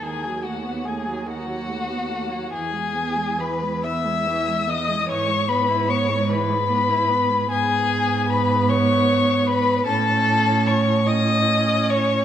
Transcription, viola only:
X:1
M:6/8
L:1/16
Q:3/8=49
K:E
V:1 name="Viola" clef=bass
D, F, A, B, A, F, D, F, A, B, A, F, | E, G, B, G, E, G, B, G, E, G, B, G, | E, G, B, E B, G, E, G, B, E B, G, | B,12 |
C6 C6 |]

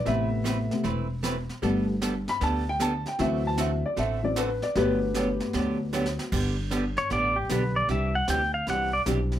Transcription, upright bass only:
X:1
M:4/4
L:1/8
Q:"Swing" 1/4=153
K:G
V:1 name="Upright bass" clef=bass
A,,,4 E,,,4 | G,,,4 D,,4 | D,,4 A,,,4 | G,,,4 D,,4 |
G,,,4 A,,,2 B,,,2 | C,,2 D,,2 C,,2 B,,,2 |]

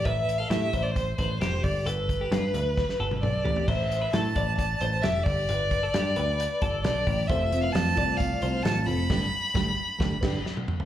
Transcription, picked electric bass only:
X:1
M:4/4
L:1/16
Q:1/4=133
K:Gmix
V:1 name="Picked electric bass" clef=bass
A,,,4 A,,2 A,,,4 A,,,2 F,,,2 G,,,2 | G,,,4 G,,2 D,,3 z G,,,2 B,,,2 A,,,2 | A,,,4 A,,2 A,,,4 A,,,2 F,,,2 G,,,2 | G,,,4 G,,2 D,,3 z G,,,2 B,,,2 A,,,2 |
F,,,4 F,,2 C,,4 C,,2 A,,,2 F,,,2 | G,,,2 z2 G,,,2 z2 G,,,2 G,,,2 z4 |]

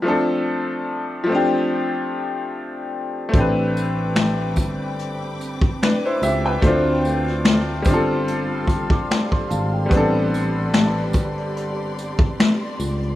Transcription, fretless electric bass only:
X:1
M:4/4
L:1/16
Q:"Swing 16ths" 1/4=73
K:Am
V:1 name="Fretless electric bass" clef=bass
z16 | A,,,6 G,,,4- G,,, z3 ^C,,2 | D,,6 G,,,4- G,,, z3 ^G,,,2 | A,,,6 G,,,4- G,,, z3 ^C,,2 |]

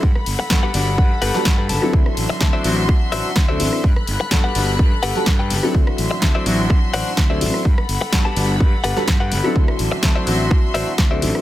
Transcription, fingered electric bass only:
X:1
M:4/4
L:1/8
Q:"Swing 16ths" 1/4=126
K:Dmix
V:1 name="Fingered electric bass" clef=bass
G,, G,,, G,, G,,, G,, G,,, G,, G,,, | D,, A,,, D,, A,,, D,, A,,, D,, A,,, | G,, G,,, G,, G,,, G,, G,,, G,, G,,, | D,, A,,, D,, A,,, D,, A,,, D,, A,,, |
G,, G,,, G,, G,,, G,, G,,, G,, G,,, | D,, A,,, D,, A,,, D,, A,,, D,, A,,, |]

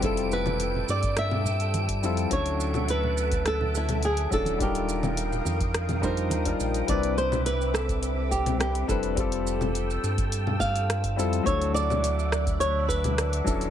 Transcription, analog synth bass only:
X:1
M:4/4
L:1/8
Q:1/4=105
K:C
V:1 name="Analog synth bass" clef=bass
F,,,3 G,,4 F,, | D,,6- D,, _E,,,- | _E,,,3 F,,3 _E,, _B,,, | C,,6- C,, F,,,- |
F,,,3 G,,4 F,, | D,,6- D,, _E,,, |]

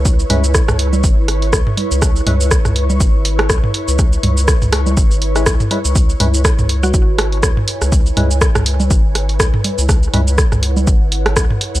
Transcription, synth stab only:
X:1
M:4/4
L:1/16
Q:"Swing 16ths" 1/4=122
K:C#m
V:1 name="Synth stab"
z2 [G,CEB] z12 z | z2 [G,CEB] z12 z | z8 z3 [G,CEB] z2 [G,CEB] z | z2 [G,CEB] z12 z |
z2 [G,CEB] z12 z | z2 [G,CEB] z12 z |]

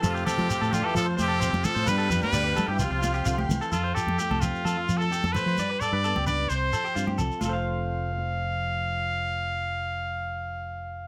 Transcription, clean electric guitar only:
X:1
M:4/4
L:1/16
Q:1/4=130
K:F
V:1 name="Clean electric guitar"
A G A2 G A G A2 c c A c z2 c | =B A B2 d B A G2 F F G F G2 A | A c A2 G A G2 A F2 A G A c c | d =B A B A G B2 c2 A G F G A2 |
[FAcf]16- | [FAcf]16 |]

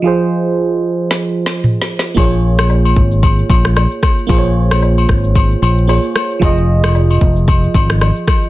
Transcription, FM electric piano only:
X:1
M:4/4
L:1/8
Q:"Swing 16ths" 1/4=113
K:Bbm
V:1 name="FM electric piano"
[F,FAc]8 | [B,FAd]8 | [B,FAcd]6 [B,FAd]2 | [F,FAe]8 |]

